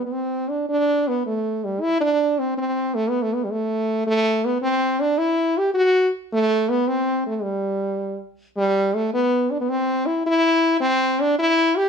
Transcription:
0, 0, Header, 1, 2, 480
1, 0, Start_track
1, 0, Key_signature, 1, "major"
1, 0, Tempo, 374766
1, 875, Time_signature, 6, 3, 24, 8
1, 15227, End_track
2, 0, Start_track
2, 0, Title_t, "French horn"
2, 0, Program_c, 0, 60
2, 70, Note_on_c, 0, 59, 67
2, 154, Note_on_c, 0, 60, 96
2, 174, Note_off_c, 0, 59, 0
2, 627, Note_on_c, 0, 62, 81
2, 646, Note_off_c, 0, 60, 0
2, 868, Note_off_c, 0, 62, 0
2, 883, Note_on_c, 0, 62, 101
2, 1383, Note_on_c, 0, 59, 87
2, 1402, Note_off_c, 0, 62, 0
2, 1606, Note_off_c, 0, 59, 0
2, 1621, Note_on_c, 0, 57, 86
2, 2104, Note_on_c, 0, 55, 88
2, 2123, Note_off_c, 0, 57, 0
2, 2326, Note_on_c, 0, 64, 111
2, 2345, Note_off_c, 0, 55, 0
2, 2563, Note_off_c, 0, 64, 0
2, 2570, Note_on_c, 0, 62, 106
2, 3059, Note_on_c, 0, 60, 92
2, 3079, Note_off_c, 0, 62, 0
2, 3290, Note_off_c, 0, 60, 0
2, 3297, Note_on_c, 0, 60, 95
2, 3776, Note_on_c, 0, 57, 99
2, 3796, Note_off_c, 0, 60, 0
2, 3954, Note_on_c, 0, 59, 89
2, 3973, Note_off_c, 0, 57, 0
2, 4130, Note_on_c, 0, 57, 105
2, 4149, Note_off_c, 0, 59, 0
2, 4276, Note_on_c, 0, 59, 78
2, 4295, Note_off_c, 0, 57, 0
2, 4409, Note_on_c, 0, 55, 69
2, 4428, Note_off_c, 0, 59, 0
2, 4504, Note_on_c, 0, 57, 102
2, 4524, Note_off_c, 0, 55, 0
2, 5203, Note_off_c, 0, 57, 0
2, 5211, Note_on_c, 0, 57, 115
2, 5703, Note_on_c, 0, 59, 92
2, 5722, Note_off_c, 0, 57, 0
2, 5909, Note_off_c, 0, 59, 0
2, 5917, Note_on_c, 0, 60, 107
2, 6409, Note_on_c, 0, 62, 100
2, 6428, Note_off_c, 0, 60, 0
2, 6637, Note_on_c, 0, 64, 117
2, 6657, Note_off_c, 0, 62, 0
2, 7146, Note_on_c, 0, 67, 100
2, 7165, Note_off_c, 0, 64, 0
2, 7349, Note_off_c, 0, 67, 0
2, 7356, Note_on_c, 0, 66, 113
2, 7811, Note_off_c, 0, 66, 0
2, 8104, Note_on_c, 0, 57, 117
2, 8573, Note_on_c, 0, 59, 101
2, 8592, Note_off_c, 0, 57, 0
2, 8811, Note_on_c, 0, 60, 113
2, 8830, Note_off_c, 0, 59, 0
2, 9292, Note_off_c, 0, 60, 0
2, 9308, Note_on_c, 0, 57, 83
2, 9512, Note_on_c, 0, 55, 84
2, 9531, Note_off_c, 0, 57, 0
2, 10489, Note_off_c, 0, 55, 0
2, 10979, Note_on_c, 0, 55, 112
2, 11467, Note_on_c, 0, 57, 98
2, 11486, Note_off_c, 0, 55, 0
2, 11689, Note_off_c, 0, 57, 0
2, 11705, Note_on_c, 0, 59, 107
2, 12177, Note_on_c, 0, 62, 85
2, 12196, Note_off_c, 0, 59, 0
2, 12299, Note_off_c, 0, 62, 0
2, 12307, Note_on_c, 0, 59, 90
2, 12417, Note_on_c, 0, 60, 117
2, 12436, Note_off_c, 0, 59, 0
2, 12890, Note_on_c, 0, 64, 97
2, 12909, Note_off_c, 0, 60, 0
2, 13119, Note_off_c, 0, 64, 0
2, 13145, Note_on_c, 0, 64, 121
2, 13799, Note_off_c, 0, 64, 0
2, 13836, Note_on_c, 0, 60, 124
2, 14349, Note_on_c, 0, 62, 115
2, 14368, Note_off_c, 0, 60, 0
2, 14566, Note_off_c, 0, 62, 0
2, 14583, Note_on_c, 0, 64, 127
2, 15065, Note_on_c, 0, 67, 115
2, 15084, Note_off_c, 0, 64, 0
2, 15227, Note_off_c, 0, 67, 0
2, 15227, End_track
0, 0, End_of_file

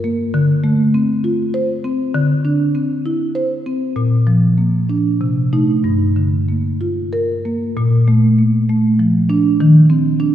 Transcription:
0, 0, Header, 1, 2, 480
1, 0, Start_track
1, 0, Key_signature, -2, "minor"
1, 0, Tempo, 603015
1, 272, Time_signature, 3, 2, 24, 8
1, 3152, Tempo, 622407
1, 4112, Tempo, 641711
1, 6032, Tempo, 606673
1, 8071, End_track
2, 0, Start_track
2, 0, Title_t, "Marimba"
2, 0, Program_c, 0, 12
2, 0, Note_on_c, 0, 43, 60
2, 0, Note_on_c, 0, 70, 61
2, 32, Note_on_c, 0, 58, 47
2, 175, Note_off_c, 0, 70, 0
2, 240, Note_off_c, 0, 43, 0
2, 270, Note_on_c, 0, 50, 65
2, 272, Note_off_c, 0, 58, 0
2, 507, Note_on_c, 0, 57, 51
2, 752, Note_on_c, 0, 60, 42
2, 890, Note_off_c, 0, 57, 0
2, 988, Note_on_c, 0, 65, 49
2, 1130, Note_off_c, 0, 60, 0
2, 1226, Note_on_c, 0, 72, 53
2, 1368, Note_off_c, 0, 65, 0
2, 1468, Note_on_c, 0, 60, 51
2, 1608, Note_off_c, 0, 72, 0
2, 1670, Note_off_c, 0, 50, 0
2, 1706, Note_off_c, 0, 60, 0
2, 1707, Note_on_c, 0, 50, 64
2, 1948, Note_on_c, 0, 62, 50
2, 2188, Note_on_c, 0, 60, 41
2, 2334, Note_off_c, 0, 62, 0
2, 2433, Note_on_c, 0, 64, 46
2, 2574, Note_off_c, 0, 60, 0
2, 2668, Note_on_c, 0, 72, 57
2, 2816, Note_off_c, 0, 64, 0
2, 2915, Note_on_c, 0, 60, 44
2, 3054, Note_off_c, 0, 72, 0
2, 3122, Note_off_c, 0, 50, 0
2, 3153, Note_on_c, 0, 46, 59
2, 3154, Note_off_c, 0, 60, 0
2, 3390, Note_on_c, 0, 53, 49
2, 3629, Note_on_c, 0, 58, 35
2, 3774, Note_off_c, 0, 53, 0
2, 3873, Note_on_c, 0, 62, 49
2, 4016, Note_off_c, 0, 58, 0
2, 4084, Note_off_c, 0, 46, 0
2, 4114, Note_off_c, 0, 62, 0
2, 4115, Note_on_c, 0, 48, 46
2, 4354, Note_on_c, 0, 57, 40
2, 4355, Note_on_c, 0, 63, 51
2, 4568, Note_off_c, 0, 57, 0
2, 4569, Note_off_c, 0, 63, 0
2, 4577, Note_off_c, 0, 48, 0
2, 4588, Note_on_c, 0, 43, 56
2, 4828, Note_on_c, 0, 50, 41
2, 5070, Note_on_c, 0, 58, 35
2, 5215, Note_off_c, 0, 50, 0
2, 5311, Note_on_c, 0, 65, 42
2, 5456, Note_off_c, 0, 58, 0
2, 5549, Note_on_c, 0, 70, 49
2, 5697, Note_off_c, 0, 65, 0
2, 5793, Note_on_c, 0, 58, 44
2, 5937, Note_off_c, 0, 70, 0
2, 6001, Note_off_c, 0, 43, 0
2, 6029, Note_on_c, 0, 46, 65
2, 6032, Note_off_c, 0, 58, 0
2, 6274, Note_on_c, 0, 57, 50
2, 6518, Note_on_c, 0, 58, 36
2, 6662, Note_off_c, 0, 57, 0
2, 6760, Note_off_c, 0, 58, 0
2, 6761, Note_on_c, 0, 57, 47
2, 7000, Note_on_c, 0, 53, 44
2, 7146, Note_off_c, 0, 57, 0
2, 7237, Note_on_c, 0, 62, 65
2, 7384, Note_off_c, 0, 53, 0
2, 7447, Note_off_c, 0, 46, 0
2, 7478, Note_off_c, 0, 62, 0
2, 7482, Note_on_c, 0, 51, 68
2, 7715, Note_on_c, 0, 60, 50
2, 7952, Note_on_c, 0, 62, 57
2, 8071, Note_off_c, 0, 51, 0
2, 8071, Note_off_c, 0, 60, 0
2, 8071, Note_off_c, 0, 62, 0
2, 8071, End_track
0, 0, End_of_file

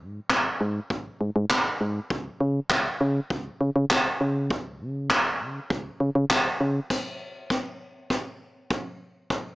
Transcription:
0, 0, Header, 1, 3, 480
1, 0, Start_track
1, 0, Tempo, 600000
1, 1683, Time_signature, 4, 2, 24, 8
1, 7640, End_track
2, 0, Start_track
2, 0, Title_t, "FM bass"
2, 0, Program_c, 0, 39
2, 5, Note_on_c, 0, 44, 96
2, 160, Note_off_c, 0, 44, 0
2, 243, Note_on_c, 0, 32, 100
2, 399, Note_off_c, 0, 32, 0
2, 485, Note_on_c, 0, 44, 102
2, 640, Note_off_c, 0, 44, 0
2, 722, Note_on_c, 0, 32, 100
2, 879, Note_off_c, 0, 32, 0
2, 965, Note_on_c, 0, 44, 90
2, 1042, Note_off_c, 0, 44, 0
2, 1085, Note_on_c, 0, 44, 98
2, 1163, Note_off_c, 0, 44, 0
2, 1204, Note_on_c, 0, 32, 107
2, 1360, Note_off_c, 0, 32, 0
2, 1445, Note_on_c, 0, 44, 100
2, 1601, Note_off_c, 0, 44, 0
2, 1683, Note_on_c, 0, 37, 99
2, 1839, Note_off_c, 0, 37, 0
2, 1924, Note_on_c, 0, 49, 98
2, 2080, Note_off_c, 0, 49, 0
2, 2163, Note_on_c, 0, 37, 104
2, 2319, Note_off_c, 0, 37, 0
2, 2405, Note_on_c, 0, 49, 108
2, 2561, Note_off_c, 0, 49, 0
2, 2643, Note_on_c, 0, 37, 109
2, 2799, Note_off_c, 0, 37, 0
2, 2885, Note_on_c, 0, 49, 97
2, 2962, Note_off_c, 0, 49, 0
2, 3005, Note_on_c, 0, 49, 91
2, 3082, Note_off_c, 0, 49, 0
2, 3125, Note_on_c, 0, 37, 107
2, 3281, Note_off_c, 0, 37, 0
2, 3365, Note_on_c, 0, 49, 96
2, 3603, Note_on_c, 0, 37, 99
2, 3615, Note_off_c, 0, 49, 0
2, 3844, Note_on_c, 0, 49, 103
2, 3856, Note_off_c, 0, 37, 0
2, 4084, Note_on_c, 0, 37, 103
2, 4096, Note_off_c, 0, 49, 0
2, 4322, Note_on_c, 0, 49, 94
2, 4334, Note_off_c, 0, 37, 0
2, 4478, Note_off_c, 0, 49, 0
2, 4562, Note_on_c, 0, 37, 102
2, 4718, Note_off_c, 0, 37, 0
2, 4803, Note_on_c, 0, 49, 94
2, 4881, Note_off_c, 0, 49, 0
2, 4922, Note_on_c, 0, 49, 90
2, 5001, Note_off_c, 0, 49, 0
2, 5045, Note_on_c, 0, 37, 105
2, 5200, Note_off_c, 0, 37, 0
2, 5283, Note_on_c, 0, 49, 99
2, 5439, Note_off_c, 0, 49, 0
2, 7640, End_track
3, 0, Start_track
3, 0, Title_t, "Drums"
3, 239, Note_on_c, 9, 38, 79
3, 241, Note_on_c, 9, 39, 96
3, 242, Note_on_c, 9, 36, 107
3, 319, Note_off_c, 9, 38, 0
3, 321, Note_off_c, 9, 39, 0
3, 322, Note_off_c, 9, 36, 0
3, 722, Note_on_c, 9, 36, 99
3, 802, Note_off_c, 9, 36, 0
3, 1200, Note_on_c, 9, 38, 100
3, 1202, Note_on_c, 9, 39, 121
3, 1204, Note_on_c, 9, 36, 118
3, 1280, Note_off_c, 9, 38, 0
3, 1282, Note_off_c, 9, 39, 0
3, 1284, Note_off_c, 9, 36, 0
3, 1683, Note_on_c, 9, 36, 108
3, 1763, Note_off_c, 9, 36, 0
3, 2160, Note_on_c, 9, 38, 80
3, 2162, Note_on_c, 9, 39, 98
3, 2163, Note_on_c, 9, 36, 108
3, 2240, Note_off_c, 9, 38, 0
3, 2242, Note_off_c, 9, 39, 0
3, 2243, Note_off_c, 9, 36, 0
3, 2643, Note_on_c, 9, 36, 100
3, 2723, Note_off_c, 9, 36, 0
3, 3122, Note_on_c, 9, 38, 101
3, 3124, Note_on_c, 9, 39, 113
3, 3126, Note_on_c, 9, 36, 114
3, 3202, Note_off_c, 9, 38, 0
3, 3204, Note_off_c, 9, 39, 0
3, 3206, Note_off_c, 9, 36, 0
3, 3603, Note_on_c, 9, 36, 111
3, 3683, Note_off_c, 9, 36, 0
3, 4081, Note_on_c, 9, 38, 78
3, 4083, Note_on_c, 9, 36, 106
3, 4083, Note_on_c, 9, 39, 102
3, 4161, Note_off_c, 9, 38, 0
3, 4163, Note_off_c, 9, 36, 0
3, 4163, Note_off_c, 9, 39, 0
3, 4563, Note_on_c, 9, 36, 96
3, 4643, Note_off_c, 9, 36, 0
3, 5041, Note_on_c, 9, 38, 94
3, 5043, Note_on_c, 9, 39, 120
3, 5045, Note_on_c, 9, 36, 118
3, 5121, Note_off_c, 9, 38, 0
3, 5123, Note_off_c, 9, 39, 0
3, 5125, Note_off_c, 9, 36, 0
3, 5522, Note_on_c, 9, 36, 107
3, 5522, Note_on_c, 9, 38, 52
3, 5522, Note_on_c, 9, 49, 90
3, 5602, Note_off_c, 9, 36, 0
3, 5602, Note_off_c, 9, 38, 0
3, 5602, Note_off_c, 9, 49, 0
3, 6001, Note_on_c, 9, 38, 52
3, 6002, Note_on_c, 9, 36, 107
3, 6081, Note_off_c, 9, 38, 0
3, 6082, Note_off_c, 9, 36, 0
3, 6482, Note_on_c, 9, 36, 99
3, 6483, Note_on_c, 9, 38, 53
3, 6562, Note_off_c, 9, 36, 0
3, 6563, Note_off_c, 9, 38, 0
3, 6962, Note_on_c, 9, 38, 58
3, 6964, Note_on_c, 9, 36, 119
3, 7042, Note_off_c, 9, 38, 0
3, 7044, Note_off_c, 9, 36, 0
3, 7442, Note_on_c, 9, 36, 110
3, 7442, Note_on_c, 9, 38, 59
3, 7522, Note_off_c, 9, 36, 0
3, 7522, Note_off_c, 9, 38, 0
3, 7640, End_track
0, 0, End_of_file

